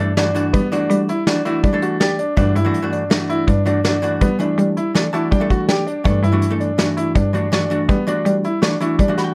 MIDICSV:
0, 0, Header, 1, 5, 480
1, 0, Start_track
1, 0, Tempo, 367647
1, 701, Time_signature, 5, 2, 24, 8
1, 12194, End_track
2, 0, Start_track
2, 0, Title_t, "Grand piano"
2, 0, Program_c, 0, 0
2, 0, Note_on_c, 0, 62, 61
2, 154, Note_off_c, 0, 62, 0
2, 223, Note_on_c, 0, 62, 77
2, 564, Note_off_c, 0, 62, 0
2, 697, Note_on_c, 0, 59, 82
2, 869, Note_off_c, 0, 59, 0
2, 946, Note_on_c, 0, 62, 72
2, 1286, Note_off_c, 0, 62, 0
2, 1424, Note_on_c, 0, 64, 69
2, 1594, Note_off_c, 0, 64, 0
2, 1660, Note_on_c, 0, 62, 62
2, 1831, Note_off_c, 0, 62, 0
2, 1897, Note_on_c, 0, 64, 65
2, 2069, Note_off_c, 0, 64, 0
2, 2137, Note_on_c, 0, 62, 72
2, 2309, Note_off_c, 0, 62, 0
2, 2381, Note_on_c, 0, 66, 63
2, 2552, Note_off_c, 0, 66, 0
2, 2623, Note_on_c, 0, 67, 78
2, 2793, Note_off_c, 0, 67, 0
2, 2861, Note_on_c, 0, 62, 66
2, 3032, Note_off_c, 0, 62, 0
2, 3103, Note_on_c, 0, 62, 89
2, 3273, Note_off_c, 0, 62, 0
2, 3342, Note_on_c, 0, 64, 73
2, 3683, Note_off_c, 0, 64, 0
2, 3816, Note_on_c, 0, 62, 62
2, 4160, Note_off_c, 0, 62, 0
2, 4302, Note_on_c, 0, 64, 74
2, 4472, Note_off_c, 0, 64, 0
2, 4545, Note_on_c, 0, 62, 69
2, 4715, Note_off_c, 0, 62, 0
2, 4790, Note_on_c, 0, 62, 70
2, 4957, Note_off_c, 0, 62, 0
2, 5031, Note_on_c, 0, 62, 75
2, 5370, Note_off_c, 0, 62, 0
2, 5513, Note_on_c, 0, 59, 77
2, 5679, Note_off_c, 0, 59, 0
2, 5752, Note_on_c, 0, 62, 66
2, 6090, Note_off_c, 0, 62, 0
2, 6226, Note_on_c, 0, 64, 59
2, 6395, Note_off_c, 0, 64, 0
2, 6468, Note_on_c, 0, 62, 59
2, 6636, Note_off_c, 0, 62, 0
2, 6703, Note_on_c, 0, 64, 65
2, 6873, Note_off_c, 0, 64, 0
2, 6939, Note_on_c, 0, 62, 72
2, 7111, Note_off_c, 0, 62, 0
2, 7184, Note_on_c, 0, 66, 67
2, 7354, Note_off_c, 0, 66, 0
2, 7424, Note_on_c, 0, 67, 76
2, 7594, Note_off_c, 0, 67, 0
2, 7660, Note_on_c, 0, 62, 67
2, 7831, Note_off_c, 0, 62, 0
2, 7903, Note_on_c, 0, 62, 81
2, 8073, Note_off_c, 0, 62, 0
2, 8140, Note_on_c, 0, 64, 75
2, 8482, Note_off_c, 0, 64, 0
2, 8620, Note_on_c, 0, 62, 63
2, 8963, Note_off_c, 0, 62, 0
2, 9097, Note_on_c, 0, 64, 68
2, 9270, Note_off_c, 0, 64, 0
2, 9344, Note_on_c, 0, 62, 63
2, 9514, Note_off_c, 0, 62, 0
2, 9583, Note_on_c, 0, 62, 68
2, 9754, Note_off_c, 0, 62, 0
2, 9829, Note_on_c, 0, 62, 75
2, 10168, Note_off_c, 0, 62, 0
2, 10305, Note_on_c, 0, 59, 74
2, 10475, Note_off_c, 0, 59, 0
2, 10547, Note_on_c, 0, 62, 73
2, 10887, Note_off_c, 0, 62, 0
2, 11029, Note_on_c, 0, 64, 62
2, 11197, Note_off_c, 0, 64, 0
2, 11260, Note_on_c, 0, 62, 68
2, 11431, Note_off_c, 0, 62, 0
2, 11496, Note_on_c, 0, 64, 70
2, 11669, Note_off_c, 0, 64, 0
2, 11742, Note_on_c, 0, 62, 74
2, 11913, Note_off_c, 0, 62, 0
2, 11980, Note_on_c, 0, 66, 71
2, 12151, Note_off_c, 0, 66, 0
2, 12194, End_track
3, 0, Start_track
3, 0, Title_t, "Hollow-body jazz guitar"
3, 0, Program_c, 1, 26
3, 0, Note_on_c, 1, 52, 65
3, 0, Note_on_c, 1, 57, 51
3, 0, Note_on_c, 1, 62, 62
3, 0, Note_on_c, 1, 69, 61
3, 150, Note_off_c, 1, 52, 0
3, 151, Note_off_c, 1, 57, 0
3, 154, Note_off_c, 1, 62, 0
3, 156, Note_off_c, 1, 69, 0
3, 221, Note_on_c, 1, 52, 91
3, 231, Note_on_c, 1, 62, 76
3, 233, Note_on_c, 1, 57, 66
3, 239, Note_on_c, 1, 66, 87
3, 392, Note_off_c, 1, 52, 0
3, 393, Note_off_c, 1, 57, 0
3, 396, Note_off_c, 1, 62, 0
3, 398, Note_off_c, 1, 66, 0
3, 452, Note_on_c, 1, 52, 82
3, 460, Note_on_c, 1, 57, 58
3, 463, Note_on_c, 1, 62, 81
3, 468, Note_on_c, 1, 66, 90
3, 796, Note_off_c, 1, 52, 0
3, 798, Note_off_c, 1, 57, 0
3, 801, Note_off_c, 1, 62, 0
3, 804, Note_off_c, 1, 66, 0
3, 937, Note_on_c, 1, 52, 82
3, 943, Note_on_c, 1, 62, 78
3, 946, Note_on_c, 1, 57, 67
3, 954, Note_on_c, 1, 66, 91
3, 1448, Note_off_c, 1, 52, 0
3, 1449, Note_off_c, 1, 57, 0
3, 1451, Note_off_c, 1, 62, 0
3, 1454, Note_off_c, 1, 66, 0
3, 1656, Note_on_c, 1, 52, 73
3, 1663, Note_on_c, 1, 57, 64
3, 1671, Note_on_c, 1, 62, 58
3, 1673, Note_on_c, 1, 66, 75
3, 1828, Note_off_c, 1, 52, 0
3, 1832, Note_off_c, 1, 57, 0
3, 1833, Note_off_c, 1, 62, 0
3, 1836, Note_off_c, 1, 66, 0
3, 1896, Note_on_c, 1, 52, 71
3, 1904, Note_on_c, 1, 62, 66
3, 1905, Note_on_c, 1, 57, 59
3, 1916, Note_on_c, 1, 66, 73
3, 2154, Note_off_c, 1, 52, 0
3, 2155, Note_off_c, 1, 57, 0
3, 2157, Note_off_c, 1, 62, 0
3, 2159, Note_off_c, 1, 66, 0
3, 2255, Note_on_c, 1, 52, 68
3, 2263, Note_on_c, 1, 57, 57
3, 2263, Note_on_c, 1, 62, 66
3, 2270, Note_on_c, 1, 69, 81
3, 2614, Note_on_c, 1, 74, 74
3, 2852, Note_off_c, 1, 52, 0
3, 2853, Note_off_c, 1, 57, 0
3, 2855, Note_off_c, 1, 62, 0
3, 2858, Note_off_c, 1, 69, 0
3, 3063, Note_off_c, 1, 74, 0
3, 3089, Note_on_c, 1, 52, 78
3, 3097, Note_on_c, 1, 57, 57
3, 3099, Note_on_c, 1, 62, 74
3, 3107, Note_on_c, 1, 66, 68
3, 3349, Note_off_c, 1, 52, 0
3, 3351, Note_off_c, 1, 57, 0
3, 3354, Note_off_c, 1, 62, 0
3, 3356, Note_off_c, 1, 66, 0
3, 3454, Note_on_c, 1, 52, 75
3, 3466, Note_on_c, 1, 57, 65
3, 3467, Note_on_c, 1, 62, 61
3, 3474, Note_on_c, 1, 66, 78
3, 3628, Note_off_c, 1, 52, 0
3, 3630, Note_off_c, 1, 57, 0
3, 3633, Note_off_c, 1, 62, 0
3, 3635, Note_off_c, 1, 66, 0
3, 3686, Note_on_c, 1, 52, 68
3, 3692, Note_on_c, 1, 57, 69
3, 3700, Note_on_c, 1, 62, 57
3, 3703, Note_on_c, 1, 66, 81
3, 3947, Note_off_c, 1, 52, 0
3, 3952, Note_off_c, 1, 57, 0
3, 3953, Note_off_c, 1, 62, 0
3, 3956, Note_off_c, 1, 66, 0
3, 4048, Note_on_c, 1, 52, 78
3, 4058, Note_on_c, 1, 62, 76
3, 4060, Note_on_c, 1, 57, 65
3, 4066, Note_on_c, 1, 66, 89
3, 4564, Note_off_c, 1, 52, 0
3, 4566, Note_off_c, 1, 57, 0
3, 4568, Note_off_c, 1, 62, 0
3, 4571, Note_off_c, 1, 66, 0
3, 4773, Note_on_c, 1, 52, 64
3, 4782, Note_on_c, 1, 57, 53
3, 4783, Note_on_c, 1, 62, 67
3, 4790, Note_on_c, 1, 66, 62
3, 4947, Note_off_c, 1, 52, 0
3, 4949, Note_off_c, 1, 57, 0
3, 4951, Note_off_c, 1, 62, 0
3, 4952, Note_off_c, 1, 66, 0
3, 5016, Note_on_c, 1, 52, 71
3, 5023, Note_on_c, 1, 62, 76
3, 5027, Note_on_c, 1, 57, 61
3, 5032, Note_on_c, 1, 66, 75
3, 5188, Note_off_c, 1, 52, 0
3, 5190, Note_off_c, 1, 57, 0
3, 5192, Note_off_c, 1, 62, 0
3, 5194, Note_off_c, 1, 66, 0
3, 5249, Note_on_c, 1, 52, 77
3, 5257, Note_on_c, 1, 62, 80
3, 5259, Note_on_c, 1, 57, 63
3, 5271, Note_on_c, 1, 66, 83
3, 5595, Note_off_c, 1, 52, 0
3, 5597, Note_off_c, 1, 57, 0
3, 5600, Note_off_c, 1, 62, 0
3, 5602, Note_off_c, 1, 66, 0
3, 5729, Note_on_c, 1, 52, 81
3, 5739, Note_on_c, 1, 62, 80
3, 5740, Note_on_c, 1, 57, 67
3, 5749, Note_on_c, 1, 64, 72
3, 6245, Note_off_c, 1, 52, 0
3, 6246, Note_off_c, 1, 57, 0
3, 6250, Note_off_c, 1, 62, 0
3, 6251, Note_off_c, 1, 64, 0
3, 6457, Note_on_c, 1, 52, 75
3, 6465, Note_on_c, 1, 57, 54
3, 6468, Note_on_c, 1, 62, 62
3, 6475, Note_on_c, 1, 69, 78
3, 6630, Note_off_c, 1, 52, 0
3, 6631, Note_off_c, 1, 57, 0
3, 6634, Note_off_c, 1, 62, 0
3, 6637, Note_off_c, 1, 69, 0
3, 6694, Note_on_c, 1, 52, 75
3, 6696, Note_on_c, 1, 81, 61
3, 6705, Note_on_c, 1, 62, 64
3, 6708, Note_on_c, 1, 57, 54
3, 6708, Note_on_c, 1, 66, 78
3, 6924, Note_off_c, 1, 81, 0
3, 6943, Note_on_c, 1, 79, 61
3, 6952, Note_off_c, 1, 52, 0
3, 6955, Note_off_c, 1, 57, 0
3, 6956, Note_off_c, 1, 62, 0
3, 6958, Note_off_c, 1, 66, 0
3, 7049, Note_on_c, 1, 52, 64
3, 7054, Note_off_c, 1, 79, 0
3, 7057, Note_on_c, 1, 76, 49
3, 7062, Note_on_c, 1, 62, 59
3, 7065, Note_on_c, 1, 69, 87
3, 7069, Note_on_c, 1, 57, 59
3, 7395, Note_off_c, 1, 76, 0
3, 7423, Note_on_c, 1, 74, 60
3, 7648, Note_off_c, 1, 52, 0
3, 7653, Note_off_c, 1, 57, 0
3, 7653, Note_off_c, 1, 62, 0
3, 7656, Note_off_c, 1, 69, 0
3, 7869, Note_off_c, 1, 74, 0
3, 7888, Note_on_c, 1, 52, 75
3, 7893, Note_on_c, 1, 57, 75
3, 7903, Note_on_c, 1, 62, 56
3, 7903, Note_on_c, 1, 69, 84
3, 8149, Note_off_c, 1, 52, 0
3, 8152, Note_off_c, 1, 57, 0
3, 8153, Note_off_c, 1, 62, 0
3, 8156, Note_off_c, 1, 69, 0
3, 8250, Note_on_c, 1, 52, 71
3, 8257, Note_on_c, 1, 57, 69
3, 8261, Note_on_c, 1, 62, 68
3, 8270, Note_on_c, 1, 66, 79
3, 8425, Note_off_c, 1, 52, 0
3, 8429, Note_off_c, 1, 57, 0
3, 8431, Note_off_c, 1, 62, 0
3, 8433, Note_off_c, 1, 66, 0
3, 8490, Note_on_c, 1, 52, 72
3, 8493, Note_on_c, 1, 57, 75
3, 8505, Note_on_c, 1, 62, 58
3, 8506, Note_on_c, 1, 69, 81
3, 8750, Note_off_c, 1, 52, 0
3, 8753, Note_off_c, 1, 57, 0
3, 8755, Note_off_c, 1, 62, 0
3, 8758, Note_off_c, 1, 69, 0
3, 8850, Note_on_c, 1, 52, 79
3, 8856, Note_on_c, 1, 57, 70
3, 8862, Note_on_c, 1, 62, 73
3, 8868, Note_on_c, 1, 66, 78
3, 9364, Note_off_c, 1, 52, 0
3, 9367, Note_off_c, 1, 57, 0
3, 9371, Note_off_c, 1, 62, 0
3, 9372, Note_off_c, 1, 66, 0
3, 9572, Note_on_c, 1, 52, 65
3, 9582, Note_on_c, 1, 62, 58
3, 9583, Note_on_c, 1, 57, 52
3, 9590, Note_on_c, 1, 66, 64
3, 9748, Note_off_c, 1, 52, 0
3, 9750, Note_off_c, 1, 57, 0
3, 9751, Note_off_c, 1, 62, 0
3, 9755, Note_off_c, 1, 66, 0
3, 9815, Note_on_c, 1, 52, 99
3, 9823, Note_on_c, 1, 57, 72
3, 9823, Note_on_c, 1, 62, 78
3, 9828, Note_on_c, 1, 66, 94
3, 9988, Note_off_c, 1, 52, 0
3, 9989, Note_off_c, 1, 57, 0
3, 9991, Note_off_c, 1, 62, 0
3, 9994, Note_off_c, 1, 66, 0
3, 10054, Note_on_c, 1, 52, 79
3, 10065, Note_on_c, 1, 57, 74
3, 10065, Note_on_c, 1, 62, 71
3, 10072, Note_on_c, 1, 66, 90
3, 10398, Note_off_c, 1, 52, 0
3, 10399, Note_off_c, 1, 57, 0
3, 10402, Note_off_c, 1, 62, 0
3, 10405, Note_off_c, 1, 66, 0
3, 10533, Note_on_c, 1, 52, 84
3, 10542, Note_on_c, 1, 62, 86
3, 10544, Note_on_c, 1, 57, 68
3, 10551, Note_on_c, 1, 66, 101
3, 11047, Note_off_c, 1, 52, 0
3, 11049, Note_off_c, 1, 57, 0
3, 11050, Note_off_c, 1, 62, 0
3, 11054, Note_off_c, 1, 66, 0
3, 11251, Note_on_c, 1, 52, 72
3, 11255, Note_on_c, 1, 57, 71
3, 11263, Note_on_c, 1, 62, 60
3, 11266, Note_on_c, 1, 66, 83
3, 11425, Note_off_c, 1, 52, 0
3, 11428, Note_off_c, 1, 57, 0
3, 11429, Note_off_c, 1, 62, 0
3, 11433, Note_off_c, 1, 66, 0
3, 11495, Note_on_c, 1, 52, 77
3, 11506, Note_on_c, 1, 62, 70
3, 11507, Note_on_c, 1, 57, 57
3, 11514, Note_on_c, 1, 66, 73
3, 11753, Note_off_c, 1, 52, 0
3, 11755, Note_off_c, 1, 57, 0
3, 11758, Note_off_c, 1, 62, 0
3, 11760, Note_off_c, 1, 66, 0
3, 11857, Note_on_c, 1, 52, 83
3, 11863, Note_on_c, 1, 57, 64
3, 11866, Note_on_c, 1, 62, 66
3, 11873, Note_on_c, 1, 66, 78
3, 11989, Note_on_c, 1, 83, 62
3, 12059, Note_off_c, 1, 83, 0
3, 12064, Note_on_c, 1, 79, 66
3, 12194, Note_off_c, 1, 52, 0
3, 12194, Note_off_c, 1, 57, 0
3, 12194, Note_off_c, 1, 62, 0
3, 12194, Note_off_c, 1, 66, 0
3, 12194, Note_off_c, 1, 79, 0
3, 12194, End_track
4, 0, Start_track
4, 0, Title_t, "Cello"
4, 0, Program_c, 2, 42
4, 0, Note_on_c, 2, 43, 84
4, 649, Note_off_c, 2, 43, 0
4, 702, Note_on_c, 2, 55, 84
4, 1155, Note_off_c, 2, 55, 0
4, 1175, Note_on_c, 2, 55, 85
4, 2086, Note_off_c, 2, 55, 0
4, 2140, Note_on_c, 2, 55, 75
4, 3048, Note_off_c, 2, 55, 0
4, 3099, Note_on_c, 2, 43, 80
4, 3327, Note_off_c, 2, 43, 0
4, 3335, Note_on_c, 2, 43, 78
4, 4485, Note_off_c, 2, 43, 0
4, 4540, Note_on_c, 2, 43, 85
4, 5449, Note_off_c, 2, 43, 0
4, 5502, Note_on_c, 2, 55, 85
4, 5955, Note_off_c, 2, 55, 0
4, 5984, Note_on_c, 2, 55, 81
4, 6891, Note_off_c, 2, 55, 0
4, 6947, Note_on_c, 2, 55, 73
4, 7853, Note_off_c, 2, 55, 0
4, 7903, Note_on_c, 2, 43, 83
4, 8129, Note_off_c, 2, 43, 0
4, 8137, Note_on_c, 2, 43, 78
4, 9287, Note_off_c, 2, 43, 0
4, 9340, Note_on_c, 2, 43, 87
4, 10249, Note_off_c, 2, 43, 0
4, 10300, Note_on_c, 2, 55, 84
4, 10754, Note_off_c, 2, 55, 0
4, 10778, Note_on_c, 2, 55, 76
4, 11687, Note_off_c, 2, 55, 0
4, 11740, Note_on_c, 2, 55, 79
4, 12194, Note_off_c, 2, 55, 0
4, 12194, End_track
5, 0, Start_track
5, 0, Title_t, "Drums"
5, 223, Note_on_c, 9, 38, 86
5, 223, Note_on_c, 9, 42, 70
5, 353, Note_off_c, 9, 38, 0
5, 353, Note_off_c, 9, 42, 0
5, 464, Note_on_c, 9, 42, 57
5, 595, Note_off_c, 9, 42, 0
5, 703, Note_on_c, 9, 36, 98
5, 703, Note_on_c, 9, 42, 78
5, 833, Note_off_c, 9, 42, 0
5, 834, Note_off_c, 9, 36, 0
5, 943, Note_on_c, 9, 42, 59
5, 1073, Note_off_c, 9, 42, 0
5, 1179, Note_on_c, 9, 42, 67
5, 1310, Note_off_c, 9, 42, 0
5, 1419, Note_on_c, 9, 42, 53
5, 1549, Note_off_c, 9, 42, 0
5, 1657, Note_on_c, 9, 38, 97
5, 1657, Note_on_c, 9, 42, 79
5, 1787, Note_off_c, 9, 38, 0
5, 1787, Note_off_c, 9, 42, 0
5, 1895, Note_on_c, 9, 42, 53
5, 2025, Note_off_c, 9, 42, 0
5, 2133, Note_on_c, 9, 42, 60
5, 2138, Note_on_c, 9, 36, 86
5, 2264, Note_off_c, 9, 42, 0
5, 2269, Note_off_c, 9, 36, 0
5, 2377, Note_on_c, 9, 42, 50
5, 2508, Note_off_c, 9, 42, 0
5, 2620, Note_on_c, 9, 38, 90
5, 2620, Note_on_c, 9, 42, 67
5, 2750, Note_off_c, 9, 38, 0
5, 2750, Note_off_c, 9, 42, 0
5, 2856, Note_on_c, 9, 42, 52
5, 2986, Note_off_c, 9, 42, 0
5, 3096, Note_on_c, 9, 42, 64
5, 3097, Note_on_c, 9, 36, 95
5, 3227, Note_off_c, 9, 42, 0
5, 3228, Note_off_c, 9, 36, 0
5, 3339, Note_on_c, 9, 42, 54
5, 3470, Note_off_c, 9, 42, 0
5, 3577, Note_on_c, 9, 42, 70
5, 3708, Note_off_c, 9, 42, 0
5, 3818, Note_on_c, 9, 42, 47
5, 3948, Note_off_c, 9, 42, 0
5, 4060, Note_on_c, 9, 38, 98
5, 4060, Note_on_c, 9, 42, 77
5, 4190, Note_off_c, 9, 38, 0
5, 4190, Note_off_c, 9, 42, 0
5, 4302, Note_on_c, 9, 42, 56
5, 4433, Note_off_c, 9, 42, 0
5, 4542, Note_on_c, 9, 36, 83
5, 4544, Note_on_c, 9, 42, 64
5, 4672, Note_off_c, 9, 36, 0
5, 4674, Note_off_c, 9, 42, 0
5, 4781, Note_on_c, 9, 42, 55
5, 4912, Note_off_c, 9, 42, 0
5, 5021, Note_on_c, 9, 38, 99
5, 5021, Note_on_c, 9, 42, 66
5, 5152, Note_off_c, 9, 38, 0
5, 5152, Note_off_c, 9, 42, 0
5, 5262, Note_on_c, 9, 42, 55
5, 5392, Note_off_c, 9, 42, 0
5, 5499, Note_on_c, 9, 42, 77
5, 5502, Note_on_c, 9, 36, 96
5, 5629, Note_off_c, 9, 42, 0
5, 5633, Note_off_c, 9, 36, 0
5, 5740, Note_on_c, 9, 42, 54
5, 5871, Note_off_c, 9, 42, 0
5, 5984, Note_on_c, 9, 42, 66
5, 6115, Note_off_c, 9, 42, 0
5, 6227, Note_on_c, 9, 42, 54
5, 6357, Note_off_c, 9, 42, 0
5, 6466, Note_on_c, 9, 38, 99
5, 6466, Note_on_c, 9, 42, 77
5, 6597, Note_off_c, 9, 38, 0
5, 6597, Note_off_c, 9, 42, 0
5, 6706, Note_on_c, 9, 42, 51
5, 6837, Note_off_c, 9, 42, 0
5, 6946, Note_on_c, 9, 36, 81
5, 6946, Note_on_c, 9, 42, 63
5, 7077, Note_off_c, 9, 36, 0
5, 7077, Note_off_c, 9, 42, 0
5, 7186, Note_on_c, 9, 36, 66
5, 7188, Note_on_c, 9, 42, 52
5, 7316, Note_off_c, 9, 36, 0
5, 7318, Note_off_c, 9, 42, 0
5, 7423, Note_on_c, 9, 38, 88
5, 7423, Note_on_c, 9, 42, 74
5, 7553, Note_off_c, 9, 38, 0
5, 7553, Note_off_c, 9, 42, 0
5, 7666, Note_on_c, 9, 42, 49
5, 7797, Note_off_c, 9, 42, 0
5, 7903, Note_on_c, 9, 42, 77
5, 7904, Note_on_c, 9, 36, 104
5, 8034, Note_off_c, 9, 36, 0
5, 8034, Note_off_c, 9, 42, 0
5, 8143, Note_on_c, 9, 42, 56
5, 8273, Note_off_c, 9, 42, 0
5, 8379, Note_on_c, 9, 42, 68
5, 8510, Note_off_c, 9, 42, 0
5, 8622, Note_on_c, 9, 42, 49
5, 8753, Note_off_c, 9, 42, 0
5, 8861, Note_on_c, 9, 38, 106
5, 8861, Note_on_c, 9, 42, 80
5, 8991, Note_off_c, 9, 38, 0
5, 8991, Note_off_c, 9, 42, 0
5, 9102, Note_on_c, 9, 42, 58
5, 9233, Note_off_c, 9, 42, 0
5, 9342, Note_on_c, 9, 36, 87
5, 9342, Note_on_c, 9, 42, 68
5, 9473, Note_off_c, 9, 36, 0
5, 9473, Note_off_c, 9, 42, 0
5, 9588, Note_on_c, 9, 42, 54
5, 9718, Note_off_c, 9, 42, 0
5, 9826, Note_on_c, 9, 38, 93
5, 9826, Note_on_c, 9, 42, 69
5, 9957, Note_off_c, 9, 38, 0
5, 9957, Note_off_c, 9, 42, 0
5, 10062, Note_on_c, 9, 42, 55
5, 10193, Note_off_c, 9, 42, 0
5, 10302, Note_on_c, 9, 36, 99
5, 10302, Note_on_c, 9, 42, 75
5, 10432, Note_off_c, 9, 42, 0
5, 10433, Note_off_c, 9, 36, 0
5, 10542, Note_on_c, 9, 42, 58
5, 10672, Note_off_c, 9, 42, 0
5, 10782, Note_on_c, 9, 42, 68
5, 10913, Note_off_c, 9, 42, 0
5, 11022, Note_on_c, 9, 42, 45
5, 11153, Note_off_c, 9, 42, 0
5, 11262, Note_on_c, 9, 38, 102
5, 11262, Note_on_c, 9, 42, 81
5, 11393, Note_off_c, 9, 38, 0
5, 11393, Note_off_c, 9, 42, 0
5, 11503, Note_on_c, 9, 42, 56
5, 11634, Note_off_c, 9, 42, 0
5, 11738, Note_on_c, 9, 42, 61
5, 11740, Note_on_c, 9, 36, 85
5, 11869, Note_off_c, 9, 42, 0
5, 11870, Note_off_c, 9, 36, 0
5, 11981, Note_on_c, 9, 38, 31
5, 11981, Note_on_c, 9, 42, 55
5, 12111, Note_off_c, 9, 38, 0
5, 12111, Note_off_c, 9, 42, 0
5, 12194, End_track
0, 0, End_of_file